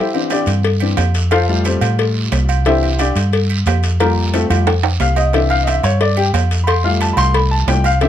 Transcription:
0.00 upright piano E4 G4 C5 E5
0.14 upright piano E3 C4 D4, low agogo
0.30 upright piano D4 G4 D5, cowbell, low timbale, low agogo, short guiro
0.46 fingered electric bass G2, cowbell, low agogo, short guiro
0.63 cowbell, long guiro
0.80 upright piano E3 C4 D4, low agogo
0.97 fingered electric bass F2, cowbell, low timbale, low agogo, short guiro
1.14 cowbell, short guiro
1.31 upright piano F4 A4 C5 F5, cowbell, low agogo, long guiro
1.48 upright piano G3 A3 F4
1.65 upright piano C4 G4 A4 C5, cowbell, low timbale, low agogo, short guiro
1.81 fingered electric bass A2, cowbell, low agogo, short guiro
1.99 cowbell, long guiro
2.32 fingered electric bass C2, cowbell, low timbale, low agogo, short guiro
2.49 low agogo, short guiro
2.65 upright piano E3 C4 D4 E4 G4 C5 E5, cowbell, low agogo, long guiro
2.83 low agogo
2.99 upright piano D4 G4 D5, cowbell, low timbale, low agogo, short guiro
3.16 fingered electric bass G2, cowbell, low agogo, short guiro
3.33 cowbell, long guiro
3.50 low agogo
3.66 fingered electric bass F2, cowbell, low timbale, low agogo, short guiro
3.83 cowbell, short guiro
4.00 upright piano G3 A#3 F4 A4 A#4, cowbell, low agogo, long guiro
4.33 upright piano A3 C4 F4 A4, cowbell, low timbale, low agogo, short guiro
4.49 fingered electric bass F2, upright piano G3 A3 F4, cowbell, low agogo, short guiro
4.67 cowbell, high timbale, long guiro
4.83 high timbale
5.00 fingered electric bass C2, upright piano F5, cowbell, low timbale, low agogo, short guiro
5.16 upright piano D#5, low timbale, low agogo, short guiro
5.33 upright piano E3 C4 D4 E5, cowbell, low agogo, long guiro
5.50 upright piano F5, low agogo
5.63 upright piano D#5, short guiro
5.67 upright piano E5, cowbell, low timbale, low agogo
5.83 fingered electric bass G2, upright piano C#5, cowbell, low agogo, short guiro
6.01 upright piano D5, cowbell, long guiro
6.17 upright piano G4, low agogo
6.33 fingered electric bass F2, cowbell, low timbale, low agogo, short guiro
6.51 cowbell, short guiro
6.64 upright piano B5, low agogo
6.68 upright piano C6, cowbell, long guiro
6.84 upright piano G3 A3 F4 F5
7.01 upright piano A5, cowbell, low timbale, low agogo, short guiro
7.13 fingered electric bass C2, upright piano B5, low agogo
7.18 upright piano C6, cowbell, short guiro
7.34 upright piano B5, cowbell, long guiro
7.51 upright piano A5
7.67 fingered electric bass C2, upright piano G3 A3 F4 G5, cowbell, low timbale, low agogo, short guiro
7.84 upright piano F5, low agogo, short guiro
8.01 upright piano E3 C4 D4 E5, cowbell, low agogo, long guiro

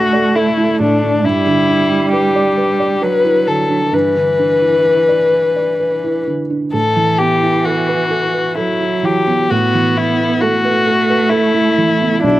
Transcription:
Already playing: felt piano D2 A2 D4 E4 A4 D5, cello A3, violin F#4
0.13 felt piano D5
0.36 violin E4, felt piano A4
0.57 felt piano E4
0.80 felt piano A2, violin D4
1.02 felt piano D4
1.23 felt piano G2, cello G3, violin E4
1.46 felt piano D3
1.68 felt piano D4
1.90 felt piano E4
2.13 violin G4, felt piano B4
2.36 felt piano D5
2.57 felt piano B4
2.80 felt piano D5
3.01 cello F#3, felt piano B4, violin B4
3.24 felt piano E4
3.47 felt piano D3, violin A4
3.70 felt piano D4
3.92 felt piano G2, cello E3, violin B4
4.15 felt piano D3
4.39 felt piano D4
4.62 felt piano E4
4.85 felt piano B4
5.09 felt piano D5
5.33 felt piano B4
5.56 felt piano D5
5.80 felt piano B4
6.04 felt piano E4
6.27 felt piano D3
6.50 felt piano D4
6.73 felt piano A2, cello E3, violin A4
6.96 felt piano E3
7.18 felt piano B3, violin G4
7.43 felt piano E4
7.65 violin F#4, felt piano A4
7.89 felt piano B4
8.10 felt piano A4
8.34 felt piano B4
8.56 cello F#3, violin E4, felt piano A4
8.80 felt piano E4
9.03 felt piano E3, violin G4
9.27 felt piano B3
9.51 felt piano A2, cello B3, violin F#4
9.74 felt piano E3
9.97 felt piano B3, violin E4
10.20 felt piano E4
10.41 cello A3, violin F#4, felt piano A4
10.65 felt piano B4
10.87 felt piano A4
11.10 felt piano B4
11.29 violin E4, felt piano A4
11.54 felt piano E4
11.78 felt piano E3
12.01 felt piano B3
12.21 felt piano B1, violin D4, cello E4

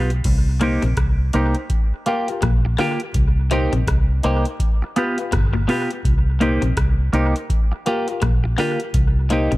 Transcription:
Already playing: fingered electric bass B1, clean electric guitar F4 G4
0.10 closed hi-hat
0.24 fingered electric bass C2, kick, closed hi-hat, crash
0.61 clean electric guitar A#2 A#3 D#4 G4, upright piano D#4 A#4 C5, closed hi-hat
0.82 fingered electric bass A#1, clean electric guitar C3, closed hi-hat
0.97 fingered electric bass C2, kick, cross-stick, closed hi-hat
1.33 fingered electric bass C2, clean electric guitar A#3 D#4 G4, upright piano D#4 A#4 C5, closed hi-hat
1.55 upright piano A#4 C5, closed hi-hat
1.70 kick, closed hi-hat
2.06 clean electric guitar A#3 F4 G4, upright piano F4 G4 A#4, closed hi-hat
2.28 upright piano F4 G4 A#4, closed hi-hat
2.42 fingered electric bass A#1, clean electric guitar A#2, kick, cross-stick, closed hi-hat
2.65 muted clean electric guitar stroke
2.78 clean electric guitar D3 A#3 F4 G4, upright piano F4 G4 A#4, cross-stick, open hi-hat
3.00 upright piano G4 A#4, closed hi-hat
3.14 fingered electric bass C2, kick, closed hi-hat
3.51 clean electric guitar A#2 A#3 D#4 G4, upright piano D#4 A#4 C5, closed hi-hat
3.73 fingered electric bass A#1, clean electric guitar C3, closed hi-hat
3.87 fingered electric bass C2, kick, cross-stick, closed hi-hat
4.23 fingered electric bass C2, clean electric guitar A#3 D#4 G4, upright piano D#4 A#4 C5, closed hi-hat
4.45 upright piano A#4 C5, closed hi-hat
4.60 kick, closed hi-hat
4.82 muted clean electric guitar stroke
4.96 clean electric guitar B3 F4 G4, upright piano F4 G4 B4, closed hi-hat
5.18 upright piano F4 G4 B4, closed hi-hat
5.32 fingered electric bass G1, clean electric guitar B2, kick, cross-stick, closed hi-hat
5.53 clean electric guitar A#2, muted clean electric guitar stroke
5.68 clean electric guitar B2 B3 F4 G4, upright piano F4 G4 B4, cross-stick, open hi-hat
5.91 upright piano G4 B4, closed hi-hat
6.05 fingered electric bass C2, kick, closed hi-hat
6.40 clean electric guitar A#2 A#3 D#4 G4, upright piano D#4 A#4 C5, closed hi-hat
6.62 fingered electric bass A#1, clean electric guitar C3, closed hi-hat
6.77 fingered electric bass C2, kick, cross-stick, closed hi-hat
7.13 fingered electric bass C2, clean electric guitar A#3 D#4 G4, upright piano D#4 A#4 C5, closed hi-hat
7.35 upright piano A#4 C5, closed hi-hat
7.50 kick, closed hi-hat
7.72 muted clean electric guitar stroke
7.86 clean electric guitar A#3 F4 G4, upright piano F4 G4 A#4, closed hi-hat
8.07 upright piano F4 G4 A#4, closed hi-hat
8.22 fingered electric bass A#1, clean electric guitar A#2, kick, cross-stick, closed hi-hat
8.44 muted clean electric guitar stroke
8.57 clean electric guitar D3 A#3 F4 G4, upright piano F4 G4 A#4, cross-stick, open hi-hat
8.80 upright piano G4 A#4, closed hi-hat
8.94 fingered electric bass C2, kick, closed hi-hat
9.30 clean electric guitar A#2 A#3 D#4 G4, upright piano D#4 A#4 C5, closed hi-hat
9.52 fingered electric bass A#1, clean electric guitar C3, closed hi-hat

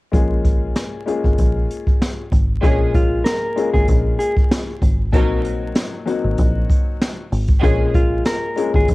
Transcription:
0.11 fingered electric bass A#1, upright piano G#3 A#3 C#4 F4 G#4, kick, closed hi-hat
0.45 kick, closed hi-hat
0.76 snare, closed hi-hat
1.06 upright piano G#3 A#3 C#4 F4 G#4, closed hi-hat
1.24 fingered electric bass G#1, kick
1.38 fingered electric bass A#1, kick, closed hi-hat
1.71 closed hi-hat
1.87 kick
2.02 snare, closed hi-hat
2.32 fingered electric bass G#1, kick, closed hi-hat
2.61 fingered electric bass A#1, string section F3 C#4 G#4, upright piano G#3 A#3 C#4 F4 G#4, kick, closed hi-hat
2.95 clean electric guitar F4, kick, closed hi-hat
3.24 clean electric guitar A#4, snare, closed hi-hat
3.56 upright piano G#3 A#3 C#4 F4 G#4, closed hi-hat
3.74 fingered electric bass G#1, clean electric guitar G#4, kick
3.88 fingered electric bass A#1, kick, closed hi-hat
4.19 clean electric guitar G#4, closed hi-hat
4.37 kick
4.51 snare, closed hi-hat
4.82 fingered electric bass G#1, kick, closed hi-hat
5.12 fingered electric bass A#1, upright piano F#3 A#3 C4 D#4 F#4, string section F#3 D#4 A#4, kick, closed hi-hat
5.45 closed hi-hat
5.75 snare, closed hi-hat
6.06 upright piano F#3 A#3 C4 D#4 F#4, closed hi-hat
6.24 fingered electric bass G#1
6.38 fingered electric bass A#1, kick, closed hi-hat
6.70 kick, closed hi-hat
7.01 snare, closed hi-hat
7.32 fingered electric bass G#1, open hi-hat
7.48 kick, closed hi-hat
7.61 fingered electric bass A#1, string section F3 C#4 G#4, upright piano G#3 A#3 C#4 F4 G#4, kick, closed hi-hat
7.94 clean electric guitar F4, kick, closed hi-hat
8.25 clean electric guitar A#4, snare, closed hi-hat
8.56 upright piano G#3 A#3 C#4 F4 G#4, closed hi-hat
8.74 fingered electric bass G#1, clean electric guitar G#4, kick
8.88 fingered electric bass A#1, kick, closed hi-hat

